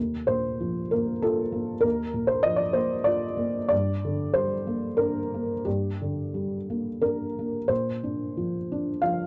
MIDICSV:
0, 0, Header, 1, 2, 480
1, 0, Start_track
1, 0, Tempo, 627615
1, 1410, Time_signature, 3, 2, 24, 8
1, 3813, Tempo, 673401
1, 6865, End_track
2, 0, Start_track
2, 0, Title_t, "Felt piano"
2, 0, Program_c, 0, 0
2, 0, Note_on_c, 0, 39, 44
2, 97, Control_c, 0, 64, 127
2, 207, Note_on_c, 0, 72, 73
2, 217, Note_on_c, 0, 46, 40
2, 462, Note_on_c, 0, 53, 40
2, 604, Note_off_c, 0, 46, 0
2, 695, Note_off_c, 0, 72, 0
2, 696, Note_on_c, 0, 70, 53
2, 713, Note_on_c, 0, 58, 44
2, 844, Note_off_c, 0, 53, 0
2, 935, Note_on_c, 0, 69, 72
2, 936, Note_off_c, 0, 70, 0
2, 946, Note_on_c, 0, 65, 44
2, 1086, Note_off_c, 0, 58, 0
2, 1163, Note_on_c, 0, 58, 44
2, 1319, Note_off_c, 0, 65, 0
2, 1376, Note_off_c, 0, 39, 0
2, 1381, Note_on_c, 0, 70, 70
2, 1397, Note_on_c, 0, 39, 55
2, 1408, Note_off_c, 0, 69, 0
2, 1425, Control_c, 0, 64, 0
2, 1535, Control_c, 0, 64, 127
2, 1547, Note_off_c, 0, 58, 0
2, 1636, Note_on_c, 0, 46, 44
2, 1739, Note_on_c, 0, 72, 78
2, 1753, Note_off_c, 0, 70, 0
2, 1858, Note_on_c, 0, 75, 89
2, 1872, Note_off_c, 0, 72, 0
2, 1878, Note_on_c, 0, 53, 46
2, 1961, Note_on_c, 0, 74, 83
2, 1990, Note_off_c, 0, 75, 0
2, 2022, Note_off_c, 0, 46, 0
2, 2089, Note_on_c, 0, 72, 78
2, 2090, Note_on_c, 0, 58, 47
2, 2100, Note_off_c, 0, 74, 0
2, 2260, Note_off_c, 0, 53, 0
2, 2326, Note_on_c, 0, 74, 85
2, 2343, Note_off_c, 0, 72, 0
2, 2346, Note_on_c, 0, 65, 55
2, 2487, Note_off_c, 0, 58, 0
2, 2577, Note_on_c, 0, 58, 51
2, 2736, Note_off_c, 0, 65, 0
2, 2801, Note_off_c, 0, 39, 0
2, 2807, Note_off_c, 0, 74, 0
2, 2818, Note_on_c, 0, 74, 84
2, 2828, Note_off_c, 0, 58, 0
2, 2838, Note_on_c, 0, 43, 58
2, 2851, Control_c, 0, 64, 0
2, 2994, Control_c, 0, 64, 127
2, 3096, Note_on_c, 0, 50, 46
2, 3310, Note_off_c, 0, 74, 0
2, 3316, Note_on_c, 0, 72, 82
2, 3325, Note_on_c, 0, 55, 44
2, 3475, Note_off_c, 0, 50, 0
2, 3572, Note_on_c, 0, 58, 44
2, 3714, Note_off_c, 0, 55, 0
2, 3800, Note_on_c, 0, 70, 71
2, 3810, Note_off_c, 0, 72, 0
2, 3814, Note_on_c, 0, 62, 42
2, 3956, Note_off_c, 0, 58, 0
2, 4067, Note_on_c, 0, 58, 37
2, 4193, Note_off_c, 0, 62, 0
2, 4261, Note_off_c, 0, 43, 0
2, 4284, Note_off_c, 0, 70, 0
2, 4287, Note_on_c, 0, 67, 55
2, 4295, Note_on_c, 0, 43, 45
2, 4304, Control_c, 0, 64, 0
2, 4446, Note_off_c, 0, 58, 0
2, 4453, Control_c, 0, 64, 127
2, 4548, Note_on_c, 0, 50, 34
2, 4780, Note_on_c, 0, 55, 38
2, 4933, Note_off_c, 0, 50, 0
2, 5034, Note_on_c, 0, 58, 36
2, 5168, Note_off_c, 0, 55, 0
2, 5260, Note_on_c, 0, 70, 59
2, 5264, Note_off_c, 0, 67, 0
2, 5265, Note_on_c, 0, 62, 37
2, 5417, Note_off_c, 0, 58, 0
2, 5525, Note_on_c, 0, 58, 35
2, 5654, Note_off_c, 0, 62, 0
2, 5724, Note_off_c, 0, 43, 0
2, 5734, Note_on_c, 0, 72, 70
2, 5742, Note_on_c, 0, 46, 51
2, 5746, Note_off_c, 0, 70, 0
2, 5757, Note_off_c, 0, 58, 0
2, 5762, Control_c, 0, 64, 0
2, 5873, Control_c, 0, 64, 127
2, 5988, Note_on_c, 0, 62, 41
2, 6228, Note_on_c, 0, 53, 41
2, 6361, Note_off_c, 0, 62, 0
2, 6473, Note_on_c, 0, 62, 39
2, 6607, Note_off_c, 0, 53, 0
2, 6686, Note_on_c, 0, 77, 75
2, 6688, Note_off_c, 0, 72, 0
2, 6696, Note_on_c, 0, 53, 41
2, 6846, Note_off_c, 0, 62, 0
2, 6865, Note_off_c, 0, 46, 0
2, 6865, Note_off_c, 0, 53, 0
2, 6865, Note_off_c, 0, 77, 0
2, 6865, End_track
0, 0, End_of_file